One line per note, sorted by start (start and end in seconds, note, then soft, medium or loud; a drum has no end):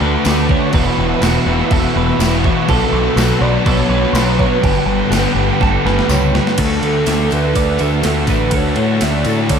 0.00 0.16 D2 medium
0.00 0.23 D3 medium
0.00 0.24 A3 medium
0.00 0.26 D4 medium
0.00 0.27 F#4 medium
0.00 1.24 F#4 medium
0.00 6.54 B4 medium
0.00 0.51 B4 medium
0.00 2.66 F#5 medium
0.00 0.72 A5 medium
0.00 0.72 D6 medium
0.24 0.55 D2 medium
0.24 0.72 D3 medium
0.24 0.50 A3 medium
0.24 0.49 D4 medium
0.24 0.48 F#4 medium
0.24 snare loud
0.24 tambourine medium
0.24 crash medium
0.49 0.73 A3 medium
0.49 0.73 D4 medium
0.49 0.75 F#4 medium
0.49 0.74 C#5 medium
0.49 kick medium
0.73 0.88 E1 loud
0.73 1.46 E2 medium
0.73 1.47 B2 medium
0.73 1.20 E3 medium
0.73 1.22 B3 medium
0.73 1.22 E4 loud
0.73 1.24 F#4 loud
0.73 1.72 B4 loud
0.73 2.67 E5 medium
0.73 2.67 E6 medium
0.73 kick loud
0.73 crash medium
0.98 1.13 E1 medium
0.98 1.22 B2 medium
0.98 1.23 E3 medium
1.21 1.37 E1 medium
1.21 1.71 E2 medium
1.21 1.48 B2 medium
1.21 1.48 E3 medium
1.21 1.48 B3 medium
1.21 1.47 E4 medium
1.21 3.18 F#4 medium
1.21 1.46 F#4 medium
1.21 snare loud
1.21 tambourine medium
1.21 crash medium
1.46 1.61 E1 medium
1.46 1.95 B2 medium
1.46 1.70 E3 medium
1.46 1.72 B3 medium
1.46 1.72 E4 medium
1.46 1.74 F#4 medium
1.60 snare soft
1.71 1.86 E1 medium
1.71 2.18 E3 medium
1.71 2.20 B3 medium
1.71 2.20 E4 medium
1.71 2.22 F#4 medium
1.71 1.96 A4 medium
1.71 kick loud
1.71 crash medium
1.94 2.11 E1 medium
1.94 2.19 B2 medium
1.94 2.20 E3 medium
1.94 2.45 B4 medium
2.09 snare soft
2.19 2.49 E1 medium
2.19 2.67 E2 medium
2.19 2.66 B2 medium
2.19 2.46 E3 medium
2.19 2.46 B3 medium
2.19 2.45 E4 medium
2.19 2.45 F#4 medium
2.19 snare loud
2.19 tambourine medium
2.19 crash medium
2.44 2.69 E3 medium
2.44 2.69 B3 medium
2.44 2.68 E4 medium
2.44 2.70 F#4 medium
2.44 2.69 C#5 medium
2.44 kick medium
2.68 2.83 B1 loud
2.68 3.41 B2 medium
2.68 3.16 F#3 medium
2.68 3.18 B3 medium
2.68 3.18 D4 loud
2.68 3.19 F#4 medium
2.68 3.42 A4 loud
2.68 3.18 A4 loud
2.68 6.55 F#5 medium
2.68 4.63 A5 medium
2.68 kick loud
2.68 crash medium
2.91 3.07 B1 medium
2.91 3.17 F#3 medium
2.91 3.18 B3 medium
3.16 3.31 B1 medium
3.16 3.65 B2 medium
3.16 3.65 F#3 medium
3.16 3.43 B3 medium
3.16 3.42 D4 medium
3.16 4.66 F#4 medium
3.16 snare loud
3.16 tambourine medium
3.16 crash medium
3.20 3.40 F#4 medium
3.41 3.56 B1 medium
3.41 3.91 F#3 medium
3.41 3.65 B3 medium
3.41 3.67 D4 medium
3.41 3.68 F#4 medium
3.41 3.68 D5 loud
3.65 3.81 B1 loud
3.65 4.13 F#3 medium
3.65 4.14 B3 medium
3.65 4.15 D4 medium
3.65 4.17 F#4 medium
3.65 3.91 A4 medium
3.65 4.40 C#5 loud
3.65 kick loud
3.65 crash medium
3.89 4.04 B1 medium
3.89 4.14 F#3 medium
3.89 4.15 B3 medium
3.89 4.39 B4 medium
4.05 snare soft
4.13 4.43 B1 medium
4.13 4.61 B2 medium
4.13 4.62 F#3 medium
4.13 4.39 B3 medium
4.13 4.39 D4 medium
4.13 4.37 F#4 medium
4.13 snare loud
4.13 tambourine loud
4.13 crash medium
4.37 4.62 B3 medium
4.37 4.64 D4 medium
4.37 4.64 F#4 medium
4.37 5.36 B4 medium
4.37 4.64 C#5 medium
4.37 kick medium
4.62 4.78 G1 loud
4.62 5.36 G2 medium
4.62 5.36 D3 loud
4.62 5.10 G3 medium
4.62 5.11 B3 loud
4.62 5.12 D4 loud
4.62 5.12 G4 loud
4.62 5.13 G4 loud
4.62 kick loud
4.62 crash medium
4.66 6.58 G5 medium
4.86 5.01 G1 medium
4.86 5.11 D3 medium
4.86 5.12 G3 medium
5.10 5.26 G1 medium
5.10 5.60 G2 medium
5.10 5.36 D3 medium
5.10 5.38 G3 medium
5.10 5.37 B3 medium
5.10 5.36 D4 medium
5.10 5.35 G4 medium
5.10 snare loud
5.10 tambourine medium
5.10 crash medium
5.35 5.50 G1 medium
5.35 5.85 D3 medium
5.35 5.83 G3 medium
5.35 5.60 B3 medium
5.35 5.61 D4 medium
5.35 5.62 G4 medium
5.39 5.58 G3 medium
5.50 snare soft
5.60 5.76 G1 medium
5.60 6.07 G3 medium
5.60 6.08 B3 medium
5.60 6.09 D4 medium
5.60 6.10 G4 medium
5.60 5.86 A4 medium
5.60 kick loud
5.60 snare medium
5.84 6.00 G1 medium
5.84 6.08 D3 medium
5.84 6.09 G3 medium
5.84 6.34 B4 medium
5.84 snare medium
5.99 snare medium
6.08 6.39 C#2 medium
6.08 6.56 G2 medium
6.08 6.55 D3 medium
6.08 6.35 G3 medium
6.08 6.34 B3 medium
6.08 6.33 D4 medium
6.08 6.32 G4 medium
6.08 6.37 C#5 medium
6.08 snare medium
6.08 tambourine medium
6.33 6.56 G3 medium
6.33 6.57 B3 medium
6.33 6.57 D4 medium
6.33 6.56 G4 medium
6.33 6.61 B4 medium
6.33 6.59 C#5 medium
6.33 snare medium
6.47 snare medium
6.57 6.80 D2 medium
6.57 7.05 D3 medium
6.57 6.84 A3 medium
6.57 6.82 D4 loud
6.57 6.81 F#4 medium
6.57 8.29 A4 medium
6.57 7.34 A4 medium
6.57 9.59 A4 medium
6.57 9.59 E5 medium
6.57 9.59 F#5 medium
6.57 9.59 A5 medium
6.57 kick loud
6.57 crash loud
6.57 ride medium
6.57 tambourine soft
6.81 7.04 D2 medium
6.81 7.06 A3 medium
6.81 7.07 D4 medium
6.81 7.08 F#4 medium
6.81 ride medium
7.05 7.29 D2 medium
7.05 7.52 D3 medium
7.05 7.54 A3 medium
7.05 7.55 D4 medium
7.05 7.55 F#4 medium
7.05 7.55 E5 medium
7.05 snare loud
7.05 ride medium
7.05 tambourine medium
7.31 7.53 D2 medium
7.31 7.83 B4 loud
7.31 ride medium
7.31 tambourine medium
7.45 snare soft
7.54 7.77 D2 medium
7.54 8.01 D3 medium
7.54 7.79 A3 medium
7.54 7.79 D4 medium
7.54 7.77 F#4 loud
7.54 7.80 D5 medium
7.54 kick loud
7.54 ride medium
7.54 tambourine medium
7.78 8.02 D2 medium
7.78 8.02 A3 medium
7.78 8.05 D4 medium
7.78 8.05 F#4 medium
7.78 8.32 A4 medium
7.78 9.03 E5 medium
7.78 ride medium
7.78 tambourine medium
7.93 snare soft
8.03 8.26 D2 medium
8.03 8.50 D3 medium
8.03 8.28 A3 medium
8.03 8.28 D4 medium
8.03 8.26 F#4 medium
8.03 snare loud
8.03 ride medium
8.03 tambourine medium
8.27 8.50 A1 medium
8.27 8.51 A3 medium
8.27 8.53 D4 medium
8.27 8.53 F#4 medium
8.27 8.54 B4 medium
8.27 8.57 B4 medium
8.27 kick medium
8.27 ride medium
8.27 tambourine medium
8.51 8.74 D2 medium
8.51 8.99 D3 medium
8.51 8.78 A3 medium
8.51 8.77 D4 medium
8.51 8.75 F#4 medium
8.51 9.02 A4 medium
8.51 kick loud
8.51 ride medium
8.51 tambourine soft
8.56 9.05 C#5 loud
8.76 8.99 A2 medium
8.76 9.00 A3 medium
8.76 9.02 D4 medium
8.76 9.02 F#4 medium
8.76 ride medium
9.00 9.23 D2 medium
9.00 9.47 D3 medium
9.00 9.49 A3 medium
9.00 9.50 D4 medium
9.00 9.51 F#4 medium
9.00 9.28 D5 loud
9.00 9.54 E5 medium
9.00 snare loud
9.00 ride medium
9.00 tambourine medium
9.25 9.48 A2 medium
9.25 9.59 C#5 loud
9.25 ride medium
9.25 tambourine medium
9.39 snare soft
9.48 9.59 D2 medium
9.48 9.59 D3 medium
9.48 9.59 A3 loud
9.48 9.59 D4 loud
9.48 9.59 F#4 loud
9.48 9.59 D5 medium
9.48 kick loud
9.48 ride loud
9.48 tambourine medium